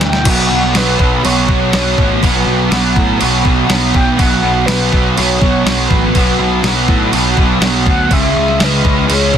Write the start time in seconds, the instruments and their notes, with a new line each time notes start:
Already playing: picked electric bass D2, distorted electric guitar E2 B2 E3
0.01 soft synth lead G5, snare, closed hi-hat
0.13 snare
0.24 picked electric bass B1, distorted electric guitar B2 F#3 B3, kick, crash
0.30 soft synth lead F#5
0.51 picked electric bass B1
0.63 snare
0.72 picked electric bass B1, distorted electric guitar B2 F#3 B3, snare, crash
0.77 soft synth lead B4
0.99 picked electric bass B1, kick
1.23 picked electric bass B1, distorted electric guitar B2 F#3 B3, soft synth lead C#5, crash
1.48 picked electric bass B1, distorted electric guitar F#3 B3, kick
1.72 picked electric bass B1, distorted electric guitar B2 F#3 B3, soft synth lead C#5, snare, crash
1.98 picked electric bass A1, kick
2.21 picked electric bass B1, distorted electric guitar B2 F#3 B3, soft synth lead B4, kick, crash
2.46 picked electric bass B1
2.69 picked electric bass B1, distorted electric guitar B2 F#3 B3, snare, crash
2.96 picked electric bass A2, kick
3.19 picked electric bass B1, distorted electric guitar B2 F#3 B3, crash
3.43 picked electric bass B1, distorted electric guitar F#3 B3, kick
3.67 picked electric bass B1, distorted electric guitar B2 F#3 B3, snare, crash
3.94 picked electric bass B1, soft synth lead G5, kick
4.17 picked electric bass B1, distorted electric guitar B2 F#3 B3, soft synth lead F#5, kick, crash
4.43 picked electric bass B1
4.66 picked electric bass B1, distorted electric guitar B2 F#3, soft synth lead B4, snare, crash
4.70 distorted electric guitar B3
4.93 picked electric bass B1, kick
5.16 picked electric bass B1, distorted electric guitar B2 F#3 B3, soft synth lead C#5, crash
5.39 picked electric bass B1, distorted electric guitar B3, soft synth lead C#5, kick
5.45 distorted electric guitar F#3
5.65 picked electric bass B1, distorted electric guitar B2 F#3 B3, snare, crash
5.88 picked electric bass A1, soft synth lead B4, kick
6.15 picked electric bass B1, distorted electric guitar B2 F#3 B3, kick, crash
6.39 picked electric bass B1
6.63 picked electric bass B1, distorted electric guitar B2 F#3 B3, snare, crash
6.88 picked electric bass A2, kick
7.12 picked electric bass B1, distorted electric guitar B2 F#3 B3, crash
7.36 picked electric bass B1, distorted electric guitar F#3 B3, kick
7.61 picked electric bass B1, distorted electric guitar B2 F#3 B3, snare, crash
7.86 picked electric bass D2, soft synth lead F#5, kick
8.10 picked electric bass C#2, distorted electric guitar C#3 G#3 C#4, soft synth lead E5, kick, crash
8.36 picked electric bass C#2
8.48 snare
8.59 picked electric bass C#2, distorted electric guitar C#3 G#3 C#4, snare, crash
8.64 soft synth lead B4
8.84 picked electric bass C#2, kick
9.07 picked electric bass C#2, distorted electric guitar C#3 G#3 C#4, crash
9.13 soft synth lead C#5
9.32 picked electric bass C#2, distorted electric guitar C#4, kick